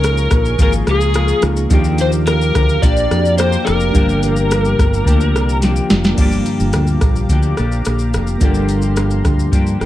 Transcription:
Already playing: C#2 C#3 F3 A#3 D#4 F4 G#4 A#4 F5 A#5 C#6
0.04 cross-stick, closed hi-hat, shaker
0.17 shaker
0.31 A#1, kick, cross-stick, closed hi-hat, shaker
0.45 shaker
0.58 G#1 F3 A#3 F4 G#4, kick, closed hi-hat, shaker
0.63 A#4
0.73 shaker
0.87 C#2 G#4, cross-stick, closed hi-hat, shaker
1.01 shaker
1.14 F3 A#3 F4 G#4, cross-stick, closed hi-hat, shaker
1.28 shaker
1.41 C#2 A#3 D#4 F4 G#4, cross-stick, closed hi-hat, shaker
1.57 shaker
1.69 D#2 D#3 F3 A#3 D4 F4 G4 A#5 D6, kick, closed hi-hat, shaker
1.74 D4 G4
1.84 shaker
1.98 C5, closed hi-hat, shaker
2.12 shaker
2.27 A#4, cross-stick, closed hi-hat, shaker
2.41 shaker
2.55 D2, kick, cross-stick, closed hi-hat, shaker
2.69 shaker
2.82 A#1 F3 A#3 D4 G4 D5, kick, closed hi-hat, shaker
2.97 shaker
3.09 F2 A#3 D4 F4 F#4, cross-stick, closed hi-hat, shaker
3.19 G4
3.25 shaker
3.38 F3 A#3 D4 C5, cross-stick, closed hi-hat, shaker
3.42 G4
3.52 shaker
3.65 F1 A#4, cross-stick, closed hi-hat, shaker
3.80 shaker
3.91 G1 G2 D3 F3 A#3 D4 F4 A#5, kick, closed hi-hat, shaker
3.96 A#3 D4 G4
4.09 shaker
4.23 closed hi-hat, shaker
4.36 shaker
4.51 cross-stick, closed hi-hat, shaker
4.65 shaker
4.79 G1, kick, cross-stick, closed hi-hat, shaker
4.94 shaker
5.05 D2 F3 A#3 D4 G4, kick, closed hi-hat, shaker
5.21 shaker
5.35 C2, cross-stick, closed hi-hat, shaker
5.49 shaker
5.61 F3 A#3 D4 G4, snare, closed hi-hat, shaker
5.76 shaker
5.89 F1 A#3 D4 F4 G4, snare, closed hi-hat, shaker
6.04 snare, shaker
6.14 G1 G2 D3 A#3 D4 F4 G4 D6, kick, closed hi-hat, crash, shaker
6.18 F3 A#3 D4 G4 F5 A#5
6.32 shaker
6.46 closed hi-hat, shaker
6.60 G1, shaker
6.73 D2, cross-stick, closed hi-hat, shaker
6.87 shaker
7.01 A#1, kick, cross-stick, closed hi-hat, shaker
7.16 shaker
7.29 D2 F3 A#3 D4 G4, kick, closed hi-hat, shaker
7.43 shaker
7.57 A#1 F3 A#3 D4 G4, cross-stick, closed hi-hat, shaker
7.72 shaker
7.85 A#1, cross-stick, closed hi-hat, shaker
7.99 shaker
8.14 F1, cross-stick, closed hi-hat, shaker
8.27 shaker
8.38 G1 G2 D3 F3 A#3 D4 F4 C6, kick, closed hi-hat, shaker
8.43 A#3 D4 G4 A4
8.50 A#4
8.54 shaker
8.69 closed hi-hat, shaker
8.82 shaker
8.97 cross-stick, closed hi-hat, shaker
9.11 shaker
9.25 D2, kick, cross-stick, closed hi-hat, shaker
9.39 shaker
9.52 G2 F3 A#3 D4 G4, kick, closed hi-hat, shaker
9.67 shaker
9.80 G1 A#3 D4 G4, cross-stick, closed hi-hat, shaker

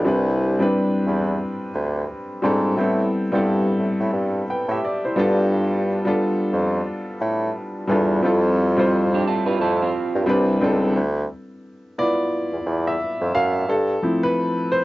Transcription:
0.04 C2 G3 C4 D4 E4 B4
0.59 G3 C4 D4 E4 B4
1.06 E2
1.74 D2
2.42 G#2 G3 C4 D4 E4 A4
2.77 A2 G3 B3 C4 E4 A4
3.32 G2 G3 B3 C4 E4 A4
3.79 A2
4.00 A2
4.13 G2
4.50 B4 G5
4.68 A2 G4 E5
4.85 D5
5.05 E4 C5
5.16 G2 G3 B3 D4 F4 A4
6.05 G3 B3 D4 F4 A4
6.53 F2
7.21 A2
7.87 E2 G3 B3 D4 F4 A4
8.22 F2 G3 C4 E4 F4 A4
8.77 G3 C4 E4 F4 C5
9.14 D4 G4
9.26 G2 E4 A4
9.46 G2 F4 B4
9.60 F2 E4 A4
9.82 C4 F4
10.15 G2
10.26 C2 G3 C4 D4 E4 B4
10.61 C#2 G3 C4 D4 E4 A4
10.95 D2
11.98 B3 E4 F4 D5
12.53 E2
12.66 E2
12.87 E5
13.21 F2
13.34 F#2 F5
13.68 G2 A4
14.03 F3 A3 C4 E4
14.23 B4
14.72 C5

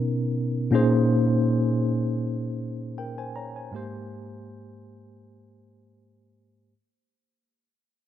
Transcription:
Already playing: B2 B3 C#4 D#4 A#4
0.71 A#2 A#3 C#4 D#4 G#4
0.75 C5
2.98 A#4 G5
3.18 C5 G#5
3.36 C#5 A#5
3.56 C5 G#5
3.71 G#2 G#3 A#3 G4
3.76 C5

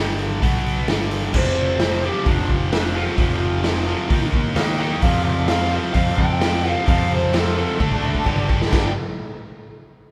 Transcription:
Already playing: G1 G2 D3 G3
0.19 open hi-hat
0.41 B1 B2 F#3 B3, kick, open hi-hat
0.66 open hi-hat
0.88 G1 G2 D3 G3, snare, open hi-hat
1.11 open hi-hat
1.34 F1 F2 C3 F3 C5, kick, crash
1.80 F2 C3 F3, snare, open hi-hat
2.03 F2 C3 F3 G4
2.25 F1 F2 C3 F3 D4, kick, open hi-hat
2.49 F1, kick
2.72 F2 C3 F3 D4, snare, open hi-hat
2.94 F2 C3 F3 F4
3.07 snare
3.17 F1 F2 C3 F3, kick, open hi-hat
3.63 F2 C3 F3, snare, open hi-hat
3.86 F2 C3 F3
4.08 D#2 D#3 A#3 D#4, kick, open hi-hat
4.33 D#2, kick
4.55 D#2 D#3 A#3 D#4 D#5 G5, snare, open hi-hat
4.79 D#3 A#3 D#4 D#5 G5
5.02 F2 C3 F3 C4 F4 A4 D5 F5, kick, open hi-hat
5.23 F3 D5 F5
5.27 C4 F4 A4
5.37 C4 F4 A4
5.48 F2 C3 F3 C4 F4 A4 F5, snare, open hi-hat
5.70 F2 C3 F3 C4 F4 A4
5.93 F2 C3 F3 F5, kick, open hi-hat
6.06 C4 F4 A4
6.17 F2 F3 C4 F4 A4 G5, kick
6.28 C4 F4 A4
6.40 F2 C3 F3 C4 F4 A4, snare, open hi-hat
6.51 C4 F4 A4
6.63 F2 C3 F3 C4 F4 A4
6.69 F5
6.76 C4 F4 A4
6.86 F2 C3 F3 C4 F4 A4 F5, kick, open hi-hat
7.09 F3 C4 F4 A4
7.14 C5
7.21 C4 F4 A4
7.32 F2 C3 F3 C4 F4 A4, snare, open hi-hat
7.56 F2 C3 F3 C4 F4 A4
7.79 D2 D3 A3 D4 A4, kick
7.92 A3 D4 A4, kick
8.02 D2 D3 A3 D4 A4
8.13 A3 D4 A4, kick
8.24 G1 G2 D3 G3 D4 G4 D5, kick
8.36 D4 G4 D5
8.47 G2 D3 G3 D4 G4 D5, kick
8.62 snare
8.71 G1 G2 D3 G3 B3 D4 G4 B4, kick, snare, splash

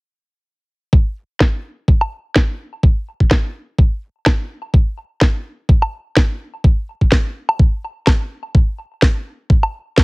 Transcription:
0.93 kick
1.40 kick, snare
1.88 kick
2.01 low woodblock
2.36 kick, snare
2.83 kick
3.20 kick
3.31 kick, snare
3.78 kick
4.26 kick, snare, low woodblock
4.74 kick
5.21 kick, snare
5.69 kick
5.82 low woodblock
6.17 kick, snare
6.64 kick
7.01 kick
7.12 kick, snare
7.49 low woodblock
7.59 kick
8.07 kick, snare, low woodblock
8.55 kick
9.02 kick, snare
9.50 kick
9.63 low woodblock
9.98 kick, snare

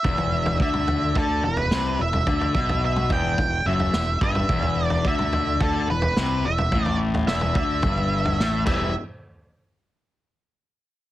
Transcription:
Already playing: E5
0.04 E1 E2, kick, floor tom
0.18 floor tom
0.46 floor tom
0.60 D2 D3 E5, kick
0.73 mid tom
0.88 floor tom
1.15 D2 D3 A4, kick, floor tom
1.44 E1 E2 B4
1.57 floor tom
1.71 C2 C3, snare
1.99 E1 E2 E5
2.13 floor tom, mid tom
2.27 D2 D3, kick, floor tom
2.41 floor tom
2.55 B1 B2, kick
2.69 floor tom
2.85 E5
2.96 mid tom
3.10 E1 E2 G5, kick, floor tom
3.38 E1 E2, kick, floor tom
3.65 F#1 F#2 E5
3.79 floor tom
3.93 E1 E2, snare
4.21 G1 G2 E5, kick
4.35 floor tom, mid tom
4.49 E1 E2, kick, floor tom
4.62 floor tom
4.85 D5
4.90 floor tom
5.05 D2 D3 E5, kick
5.19 mid tom
5.33 floor tom
5.60 D2 D3 A4, kick, floor tom
5.89 E1 E2 B4
6.02 floor tom
6.16 C2 C3, snare
6.45 E1 E2 E5
6.58 floor tom, mid tom
6.72 A1 A2, kick, floor tom
6.85 D5, floor tom
7.14 floor tom
7.27 E1 E2 E5, snare
7.41 floor tom, mid tom
7.55 D2 D3 E5, kick, floor tom
7.82 G1 G2, kick, floor tom, mid tom
7.97 floor tom
8.25 floor tom
8.39 A1 A2, snare
8.67 E1 G3 B3 E4 E5, kick, crash

